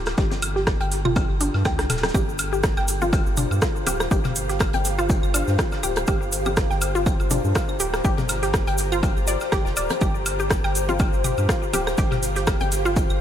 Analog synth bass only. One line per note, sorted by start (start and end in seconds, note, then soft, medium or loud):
0.00 0.14 D1 medium
0.18 0.77 G1 loud
0.81 1.26 G1 medium
1.30 1.50 G1 medium
1.54 1.64 G2 medium
1.65 1.77 D2 medium
1.79 1.88 C2 medium
1.90 2.11 D1 medium
2.15 2.74 G1 loud
2.77 3.23 G1 medium
3.26 3.47 G1 medium
3.51 3.60 G2 medium
3.87 4.08 D1 medium
4.11 4.71 G1 loud
4.74 5.20 G1 medium
5.23 5.44 G1 medium
5.48 5.57 G2 medium
5.83 6.05 D1 medium
6.08 6.67 G1 loud
6.71 7.17 G1 medium
7.20 7.40 G1 medium
7.45 7.54 G2 medium
7.80 8.01 D1 loud
8.05 8.64 G1 loud
8.67 9.13 G1 medium
9.17 9.37 G1 medium
9.52 9.64 G1 loud
9.66 9.75 F1 loud
9.77 9.88 D1 loud
10.01 10.61 G1 medium
10.64 11.10 G1 medium
11.13 11.34 G1 medium
11.38 11.47 G2 medium
11.74 11.95 D1 loud
11.98 12.58 G1 loud
12.61 13.07 G1 medium
13.10 13.21 G1 medium